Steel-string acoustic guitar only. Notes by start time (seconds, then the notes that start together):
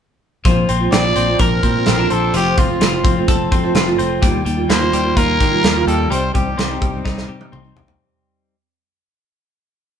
0.45 D3 A#3 C4 F4
0.80 A#3 C4 F4
1.04 A#3 C4 F4
1.28 A#3 C4 F4
1.75 A#3 C4 F4
1.98 A#2 D3 A#3 C4 F4
2.33 F3 A3 C4 F4
2.68 A3 C4 F4
2.92 A3 C4 F4
3.16 A3 C4 F4
3.63 A3 C4 F4
3.87 F3 A3 C4 F4
4.22 D#3 G3 A#3 F4
4.57 G3 A#3 F4
4.80 G3 A#3 F4
5.04 G3 A#3 F4
5.51 G3 A#3 F4
5.75 D#3 G3 A#3 F4
6.10 C3 G3 C4 D#4
6.46 G3 C4 D#4
6.69 G3 C4 D#4
6.93 G3 C4 D#4
7.40 G3 C4 D#4
7.64 C3 G3 C4 D#4